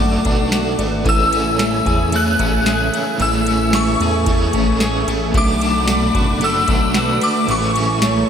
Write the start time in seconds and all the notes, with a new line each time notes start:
Already playing: F#1 F#3 D4 F#4 A4 D5 F#5 D6
0.00 A3 D4 F#4
0.24 B1 A3 D4 F#4, kick, ride
0.52 F#4, snare, ride, tambourine
0.79 G#1 A3 B4, ride
1.04 A1 A2 E3 A3 E5 G#5, kick, ride
1.08 C#4 G#4 E6
1.32 C#4, ride
1.59 A3, snare, ride, tambourine
1.86 E2 G#4, kick, ride
2.12 E3 A3 C#4 G#4 F#6, ride
2.39 A1 A3 C#4 G#4, kick, ride
2.66 G#4, snare, ride, tambourine
2.94 A3, ride
3.18 A1 A2 E3 A3 G#5, ride
3.22 C#4 G#4 E6
3.46 C#4, ride
3.73 A3 C#6, snare, ride, tambourine
4.00 E2 G#4 A4, ride
4.26 E3 A3 C#4 G#4, kick, ride
4.52 A1 A3 C#4 G#4, kick, ride
4.80 G#4, snare, ride, tambourine
5.07 A1 A3, ride
5.32 B1 B2 F#3 A3 F#5 B5 D6, kick, ride
5.36 D4 F#4 D6
5.61 D4, ride
5.88 A3, snare, ride, tambourine
6.14 F#1 F#4, kick, ride
6.40 F#3 A3 D4, ride
6.44 F#4 E6
6.67 B1 A3 D4 F#4, kick, ride
6.94 F#4 B4, snare, ride, tambourine
7.21 A3 D6, ride
7.47 A1 A2 E3 A3 E5 G#5 C#6, ride
7.52 C#4 G#4
7.76 C#4, ride
8.01 A3 C#5, snare, ride, tambourine